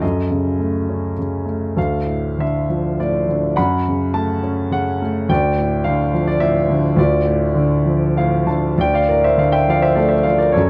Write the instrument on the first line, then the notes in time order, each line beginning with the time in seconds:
grand piano
0.02 F#2 A4 D#5
0.30 C#3
0.59 A3
0.89 C#4
1.19 C#3
1.46 A3
1.77 D2 A4 F5
2.06 A2
2.39 D3 E5
2.69 F3
3.00 A2 D5
3.29 D3
3.56 F#2 F#5 B5
3.88 C#3
4.14 A3 A5
4.43 C#4
4.71 C#3 F#5
5.02 A3
5.29 D2 D5 G5
5.58 A2
5.84 D3 F5
6.14 F3
6.28 D5
6.40 A2 E5
6.69 D3
6.96 D2 F4 D5
7.25 A2
7.55 D3
7.86 F3
8.16 A2 F5
8.46 D3 A5
8.78 D2 D5 G5
8.94 D5 F5
9.09 A2 A#4 D5
9.24 C5 E5
9.38 D3 D5 F5
9.52 E5 G5
9.68 F3 D5 F5
9.82 C5 E5
9.95 A3 A4 D5
10.09 C5 E5
10.23 F3 D5 F5
10.38 A#4 D5
10.52 F#2 A4 C#5